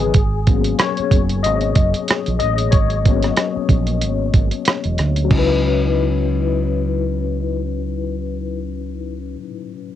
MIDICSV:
0, 0, Header, 1, 5, 480
1, 0, Start_track
1, 0, Tempo, 645161
1, 108, Time_signature, 4, 2, 24, 8
1, 7406, End_track
2, 0, Start_track
2, 0, Title_t, "Tine electric piano"
2, 0, Program_c, 0, 4
2, 0, Control_c, 0, 64, 127
2, 0, Note_on_c, 0, 49, 50
2, 0, Note_on_c, 0, 52, 42
2, 0, Note_on_c, 0, 54, 38
2, 0, Note_on_c, 0, 59, 36
2, 0, Note_on_c, 0, 63, 46
2, 0, Note_on_c, 0, 68, 80
2, 78, Note_off_c, 0, 49, 0
2, 119, Control_c, 0, 64, 0
2, 121, Note_off_c, 0, 59, 0
2, 122, Note_off_c, 0, 63, 0
2, 126, Note_off_c, 0, 52, 0
2, 126, Note_off_c, 0, 54, 0
2, 264, Control_c, 0, 64, 127
2, 356, Note_on_c, 0, 54, 50
2, 358, Note_on_c, 0, 58, 45
2, 359, Note_on_c, 0, 59, 42
2, 363, Note_on_c, 0, 61, 51
2, 557, Note_off_c, 0, 68, 0
2, 585, Note_on_c, 0, 73, 81
2, 1042, Note_off_c, 0, 54, 0
2, 1043, Note_off_c, 0, 58, 0
2, 1044, Note_off_c, 0, 59, 0
2, 1046, Note_off_c, 0, 61, 0
2, 1062, Note_on_c, 0, 75, 79
2, 1081, Note_off_c, 0, 73, 0
2, 1770, Note_off_c, 0, 75, 0
2, 1779, Note_on_c, 0, 75, 81
2, 1889, Note_off_c, 0, 75, 0
2, 2018, Note_on_c, 0, 73, 70
2, 2269, Note_on_c, 0, 54, 46
2, 2273, Note_on_c, 0, 58, 42
2, 2276, Note_on_c, 0, 59, 43
2, 2279, Note_on_c, 0, 61, 53
2, 2596, Note_off_c, 0, 54, 0
2, 2598, Note_off_c, 0, 58, 0
2, 2599, Note_off_c, 0, 59, 0
2, 2601, Note_off_c, 0, 61, 0
2, 3433, Note_off_c, 0, 73, 0
2, 3898, Note_on_c, 0, 54, 66
2, 3924, Note_on_c, 0, 61, 61
2, 3953, Note_on_c, 0, 63, 59
2, 3960, Control_c, 0, 64, 0
2, 3979, Note_on_c, 0, 64, 60
2, 4006, Note_on_c, 0, 71, 76
2, 4106, Control_c, 0, 64, 127
2, 6929, Note_off_c, 0, 54, 0
2, 6943, Note_off_c, 0, 61, 0
2, 6957, Note_off_c, 0, 63, 0
2, 6970, Note_off_c, 0, 64, 0
2, 6983, Note_off_c, 0, 71, 0
2, 7406, End_track
3, 0, Start_track
3, 0, Title_t, "Fingered electric bass"
3, 0, Program_c, 1, 33
3, 0, Note_on_c, 1, 32, 78
3, 91, Note_off_c, 1, 32, 0
3, 113, Note_on_c, 1, 32, 80
3, 540, Note_off_c, 1, 32, 0
3, 832, Note_on_c, 1, 30, 69
3, 1083, Note_off_c, 1, 30, 0
3, 1083, Note_on_c, 1, 32, 78
3, 1291, Note_off_c, 1, 32, 0
3, 1314, Note_on_c, 1, 30, 75
3, 1428, Note_off_c, 1, 30, 0
3, 1693, Note_on_c, 1, 34, 72
3, 1784, Note_off_c, 1, 34, 0
3, 1803, Note_on_c, 1, 33, 70
3, 2011, Note_off_c, 1, 33, 0
3, 2033, Note_on_c, 1, 32, 76
3, 2460, Note_off_c, 1, 32, 0
3, 2752, Note_on_c, 1, 34, 78
3, 3006, Note_off_c, 1, 34, 0
3, 3006, Note_on_c, 1, 32, 81
3, 3212, Note_off_c, 1, 32, 0
3, 3232, Note_on_c, 1, 32, 73
3, 3347, Note_off_c, 1, 32, 0
3, 3609, Note_on_c, 1, 28, 70
3, 3702, Note_off_c, 1, 28, 0
3, 3718, Note_on_c, 1, 38, 75
3, 3928, Note_off_c, 1, 38, 0
3, 3953, Note_on_c, 1, 37, 70
3, 6957, Note_off_c, 1, 37, 0
3, 7406, End_track
4, 0, Start_track
4, 0, Title_t, "Muted fingered electric bass strokes"
4, 739, Note_on_c, 9, 29, 42
4, 813, Note_off_c, 9, 29, 0
4, 2653, Note_on_c, 9, 29, 37
4, 2728, Note_off_c, 9, 29, 0
4, 7406, End_track
5, 0, Start_track
5, 0, Title_t, "Drums"
5, 0, Note_on_c, 9, 42, 43
5, 72, Note_off_c, 9, 42, 0
5, 104, Note_on_c, 9, 42, 63
5, 108, Note_on_c, 9, 36, 84
5, 178, Note_off_c, 9, 42, 0
5, 182, Note_off_c, 9, 36, 0
5, 349, Note_on_c, 9, 42, 59
5, 352, Note_on_c, 9, 36, 73
5, 423, Note_off_c, 9, 42, 0
5, 426, Note_off_c, 9, 36, 0
5, 479, Note_on_c, 9, 42, 43
5, 553, Note_off_c, 9, 42, 0
5, 586, Note_on_c, 9, 42, 64
5, 592, Note_on_c, 9, 37, 91
5, 660, Note_off_c, 9, 42, 0
5, 666, Note_off_c, 9, 37, 0
5, 721, Note_on_c, 9, 42, 31
5, 796, Note_off_c, 9, 42, 0
5, 826, Note_on_c, 9, 36, 77
5, 830, Note_on_c, 9, 42, 56
5, 901, Note_off_c, 9, 36, 0
5, 904, Note_off_c, 9, 42, 0
5, 962, Note_on_c, 9, 42, 37
5, 1036, Note_off_c, 9, 42, 0
5, 1071, Note_on_c, 9, 42, 76
5, 1146, Note_off_c, 9, 42, 0
5, 1196, Note_on_c, 9, 42, 29
5, 1270, Note_off_c, 9, 42, 0
5, 1305, Note_on_c, 9, 42, 54
5, 1307, Note_on_c, 9, 36, 75
5, 1379, Note_off_c, 9, 42, 0
5, 1382, Note_off_c, 9, 36, 0
5, 1443, Note_on_c, 9, 42, 37
5, 1517, Note_off_c, 9, 42, 0
5, 1547, Note_on_c, 9, 42, 66
5, 1566, Note_on_c, 9, 37, 91
5, 1621, Note_off_c, 9, 42, 0
5, 1640, Note_off_c, 9, 37, 0
5, 1682, Note_on_c, 9, 42, 29
5, 1756, Note_off_c, 9, 42, 0
5, 1784, Note_on_c, 9, 42, 56
5, 1858, Note_off_c, 9, 42, 0
5, 1920, Note_on_c, 9, 42, 43
5, 1994, Note_off_c, 9, 42, 0
5, 2023, Note_on_c, 9, 42, 65
5, 2029, Note_on_c, 9, 36, 86
5, 2098, Note_off_c, 9, 42, 0
5, 2103, Note_off_c, 9, 36, 0
5, 2157, Note_on_c, 9, 42, 26
5, 2232, Note_off_c, 9, 42, 0
5, 2272, Note_on_c, 9, 42, 62
5, 2274, Note_on_c, 9, 36, 72
5, 2347, Note_off_c, 9, 42, 0
5, 2348, Note_off_c, 9, 36, 0
5, 2399, Note_on_c, 9, 42, 42
5, 2412, Note_on_c, 9, 37, 29
5, 2474, Note_off_c, 9, 42, 0
5, 2486, Note_off_c, 9, 37, 0
5, 2504, Note_on_c, 9, 42, 64
5, 2510, Note_on_c, 9, 37, 84
5, 2578, Note_off_c, 9, 42, 0
5, 2584, Note_off_c, 9, 37, 0
5, 2745, Note_on_c, 9, 36, 70
5, 2748, Note_on_c, 9, 42, 51
5, 2820, Note_off_c, 9, 36, 0
5, 2822, Note_off_c, 9, 42, 0
5, 2878, Note_on_c, 9, 42, 34
5, 2952, Note_off_c, 9, 42, 0
5, 2987, Note_on_c, 9, 42, 75
5, 3062, Note_off_c, 9, 42, 0
5, 3227, Note_on_c, 9, 42, 53
5, 3228, Note_on_c, 9, 36, 67
5, 3301, Note_off_c, 9, 42, 0
5, 3302, Note_off_c, 9, 36, 0
5, 3358, Note_on_c, 9, 42, 36
5, 3432, Note_off_c, 9, 42, 0
5, 3462, Note_on_c, 9, 42, 66
5, 3481, Note_on_c, 9, 37, 89
5, 3536, Note_off_c, 9, 42, 0
5, 3555, Note_off_c, 9, 37, 0
5, 3600, Note_on_c, 9, 42, 29
5, 3674, Note_off_c, 9, 42, 0
5, 3706, Note_on_c, 9, 42, 52
5, 3714, Note_on_c, 9, 37, 25
5, 3780, Note_off_c, 9, 42, 0
5, 3788, Note_off_c, 9, 37, 0
5, 3841, Note_on_c, 9, 42, 39
5, 3915, Note_off_c, 9, 42, 0
5, 3948, Note_on_c, 9, 49, 63
5, 3949, Note_on_c, 9, 36, 76
5, 4023, Note_off_c, 9, 36, 0
5, 4023, Note_off_c, 9, 49, 0
5, 7406, End_track
0, 0, End_of_file